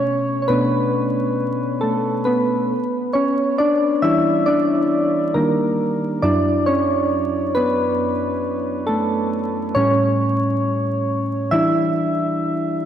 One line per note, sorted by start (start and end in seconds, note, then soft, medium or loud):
0.00 0.45 B2 medium
0.00 0.46 A3 soft
0.00 0.40 C#4 medium
0.00 0.41 C#5 medium
0.42 0.48 C#5 medium
0.48 0.89 B2 soft
0.48 0.89 A3 soft
0.48 1.34 B3 medium
0.48 0.89 D4 soft
0.48 1.32 B4 medium
1.81 2.23 A3 medium
1.81 2.22 A4 medium
2.25 3.10 B3 medium
2.25 3.16 B4 medium
3.13 3.55 C#4 medium
3.13 3.59 C#5 medium
3.58 4.00 D4 medium
3.58 4.03 D5 medium
4.02 4.63 E3 medium
4.02 4.64 G3 soft
4.02 4.46 D4 medium
4.02 4.44 E4 medium
4.02 4.47 E5 loud
4.46 5.31 D4 medium
4.46 5.37 D5 loud
5.34 6.19 D#3 medium
5.34 6.19 G3 soft
5.34 6.19 A#3 medium
5.34 6.19 D4 medium
5.34 6.25 A#4 medium
6.23 9.71 F#2 medium
6.23 9.72 F#3 soft
6.23 6.64 D4 medium
6.23 9.72 E4 medium
6.23 6.68 D5 loud
6.67 7.52 C#4 medium
6.67 7.57 C#5 medium
7.55 8.40 B3 medium
7.55 8.39 B4 medium
8.87 9.72 A3 medium
8.87 9.78 A4 medium
9.75 11.48 A2 medium
9.75 11.48 G3 soft
9.75 11.05 C#4 medium
9.75 11.03 C#5 loud
11.51 12.85 E3 medium
11.51 12.85 G3 soft
11.51 12.85 D4 medium
11.51 12.81 E4 medium
11.51 12.80 E5 loud